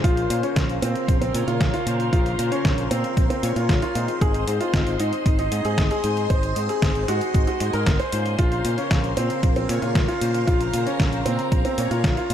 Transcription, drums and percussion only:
0.04 kick loud
0.04 closed hi-hat medium
0.17 closed hi-hat soft
0.30 closed hi-hat medium
0.43 closed hi-hat soft
0.56 kick loud
0.56 snare loud
0.56 closed hi-hat medium
0.69 closed hi-hat soft
0.82 closed hi-hat medium
0.95 closed hi-hat soft
1.08 kick loud
1.08 closed hi-hat medium
1.22 closed hi-hat soft
1.35 closed hi-hat medium
1.48 closed hi-hat soft
1.61 kick loud
1.61 snare loud
1.61 closed hi-hat medium
1.74 closed hi-hat soft
1.87 closed hi-hat medium
2.00 closed hi-hat soft
2.13 kick loud
2.13 closed hi-hat medium
2.26 closed hi-hat soft
2.39 closed hi-hat medium
2.52 closed hi-hat soft
2.65 kick loud
2.65 snare loud
2.65 closed hi-hat medium
2.78 closed hi-hat soft
2.91 closed hi-hat medium
3.04 closed hi-hat soft
3.17 kick loud
3.17 closed hi-hat medium
3.30 closed hi-hat soft
3.43 closed hi-hat medium
3.56 closed hi-hat soft
3.69 kick loud
3.69 snare loud
3.69 closed hi-hat medium
3.82 closed hi-hat soft
3.95 closed hi-hat medium
4.08 closed hi-hat soft
4.21 kick loud
4.21 closed hi-hat medium
4.34 closed hi-hat soft
4.48 closed hi-hat medium
4.61 closed hi-hat soft
4.74 kick loud
4.74 snare loud
4.74 closed hi-hat medium
4.87 closed hi-hat soft
5.00 closed hi-hat medium
5.13 closed hi-hat soft
5.26 kick loud
5.26 closed hi-hat medium
5.39 closed hi-hat soft
5.52 closed hi-hat medium
5.65 closed hi-hat soft
5.78 kick loud
5.78 snare loud
5.78 closed hi-hat medium
5.91 closed hi-hat soft
6.04 closed hi-hat medium
6.17 closed hi-hat soft
6.30 kick loud
6.30 closed hi-hat medium
6.43 closed hi-hat soft
6.56 closed hi-hat medium
6.69 closed hi-hat soft
6.82 kick loud
6.82 snare loud
6.82 closed hi-hat medium
6.95 closed hi-hat soft
7.08 closed hi-hat medium
7.21 closed hi-hat soft
7.34 kick loud
7.34 closed hi-hat medium
7.47 closed hi-hat soft
7.60 closed hi-hat medium
7.73 closed hi-hat soft
7.86 kick loud
7.86 snare loud
7.86 closed hi-hat medium
8.00 closed hi-hat soft
8.12 closed hi-hat medium
8.26 closed hi-hat soft
8.39 kick loud
8.39 closed hi-hat medium
8.52 closed hi-hat soft
8.65 closed hi-hat medium
8.78 closed hi-hat soft
8.91 kick loud
8.91 snare loud
8.91 closed hi-hat medium
9.04 closed hi-hat soft
9.17 closed hi-hat medium
9.30 closed hi-hat soft
9.43 kick loud
9.43 closed hi-hat medium
9.56 closed hi-hat soft
9.69 closed hi-hat medium
9.82 closed hi-hat soft
9.95 kick loud
9.95 snare loud
9.95 closed hi-hat medium
10.08 closed hi-hat soft
10.21 closed hi-hat medium
10.35 closed hi-hat soft
10.48 kick loud
10.48 closed hi-hat medium
10.61 closed hi-hat soft
10.74 closed hi-hat medium
10.87 closed hi-hat soft
11.00 kick loud
11.00 snare loud
11.00 closed hi-hat medium
11.13 closed hi-hat soft
11.26 closed hi-hat medium
11.39 closed hi-hat soft
11.52 kick loud
11.52 closed hi-hat medium
11.65 closed hi-hat soft
11.78 closed hi-hat medium
11.91 closed hi-hat soft
12.04 kick loud
12.04 snare loud
12.04 closed hi-hat medium
12.17 closed hi-hat soft
12.30 closed hi-hat medium

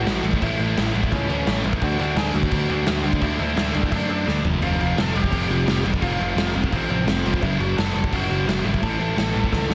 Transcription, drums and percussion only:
0.07 snare loud
0.07 crash medium
0.24 crash medium
0.33 kick medium
0.42 kick loud
0.42 crash medium
0.60 crash medium
0.77 snare loud
0.77 crash medium
0.95 crash medium
1.03 kick medium
1.12 kick loud
1.12 crash medium
1.30 crash medium
1.47 snare loud
1.47 crash medium
1.64 crash medium
1.73 kick medium
1.81 kick loud
1.81 crash loud
1.99 crash medium
2.16 snare loud
2.16 crash medium
2.34 crash medium
2.43 kick medium
2.51 kick loud
2.51 crash medium
2.69 crash medium
2.86 snare loud
2.86 crash medium
3.04 crash medium
3.13 kick medium
3.21 kick loud
3.21 crash medium
3.39 crash medium
3.57 snare loud
3.57 crash medium
3.74 crash medium
3.83 kick medium
3.92 kick loud
3.92 crash medium
4.10 crash medium
4.28 snare medium
4.45 floor tom loud
4.62 crash medium
4.80 crash medium
4.98 snare loud
4.98 crash medium
5.16 crash medium
5.24 kick medium
5.32 kick loud
5.32 crash loud
5.50 crash medium
5.68 snare loud
5.68 crash medium
5.85 crash medium
5.94 kick medium
6.02 kick loud
6.02 crash medium
6.21 crash medium
6.38 snare loud
6.38 crash medium
6.55 crash medium
6.64 kick medium
6.72 kick loud
6.72 crash medium
6.90 crash medium
7.07 snare loud
7.07 crash medium
7.25 crash medium
7.34 kick medium
7.43 kick loud
7.43 crash medium
7.60 crash medium
7.78 snare loud
7.78 crash medium
7.96 crash medium
8.04 kick medium
8.13 kick loud
8.13 crash loud
8.30 crash medium
8.49 snare loud
8.49 crash medium
8.66 crash medium
8.74 kick medium
8.83 kick loud
8.83 crash medium
9.01 crash medium
9.18 snare loud
9.18 crash medium
9.35 crash medium
9.44 kick medium
9.53 kick loud
9.53 snare medium
9.70 snare medium

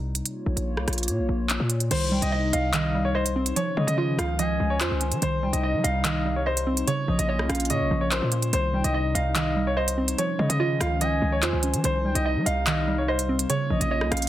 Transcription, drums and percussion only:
0.15 closed hi-hat medium
0.26 closed hi-hat medium
0.57 closed hi-hat medium
0.77 cross-stick medium
0.88 cross-stick medium
0.88 closed hi-hat medium
0.93 closed hi-hat medium
0.98 closed hi-hat medium
1.03 closed hi-hat medium
1.08 closed hi-hat medium
1.50 clap loud
1.50 closed hi-hat medium
1.70 closed hi-hat medium
1.80 closed hi-hat medium
1.91 closed hi-hat medium
1.91 crash loud
2.22 closed hi-hat medium
2.53 closed hi-hat medium
2.73 clap loud
2.73 closed hi-hat medium
3.26 closed hi-hat loud
3.46 closed hi-hat medium
3.56 closed hi-hat medium
3.88 closed hi-hat medium
4.19 cross-stick loud
4.19 closed hi-hat medium
4.39 closed hi-hat medium
4.81 clap loud
4.81 closed hi-hat medium
5.01 closed hi-hat medium
5.12 closed hi-hat medium
5.22 closed hi-hat medium
5.53 closed hi-hat medium
5.84 closed hi-hat medium
6.05 clap loud
6.05 closed hi-hat medium
6.57 closed hi-hat loud
6.77 closed hi-hat medium
6.88 closed hi-hat medium
7.19 closed hi-hat medium
7.39 cross-stick medium
7.50 cross-stick loud
7.50 closed hi-hat medium
7.55 closed hi-hat medium
7.60 closed hi-hat medium
7.65 closed hi-hat medium
7.70 closed hi-hat medium
8.12 clap loud
8.12 closed hi-hat medium
8.32 closed hi-hat medium
8.42 closed hi-hat medium
8.53 closed hi-hat medium
8.84 closed hi-hat medium
9.15 closed hi-hat medium
9.35 clap loud
9.35 closed hi-hat medium
9.88 closed hi-hat loud
10.08 closed hi-hat medium
10.18 closed hi-hat medium
10.50 closed hi-hat medium
10.81 cross-stick loud
10.81 closed hi-hat medium
11.01 closed hi-hat medium
11.43 clap loud
11.43 closed hi-hat medium
11.63 closed hi-hat medium
11.74 closed hi-hat medium
11.84 closed hi-hat medium
12.15 closed hi-hat medium
12.46 closed hi-hat medium
12.67 clap loud
12.67 closed hi-hat medium
13.19 closed hi-hat loud
13.39 closed hi-hat medium
13.50 closed hi-hat medium
13.81 closed hi-hat medium
14.01 cross-stick medium
14.12 cross-stick medium
14.12 closed hi-hat medium
14.17 closed hi-hat medium
14.22 closed hi-hat medium

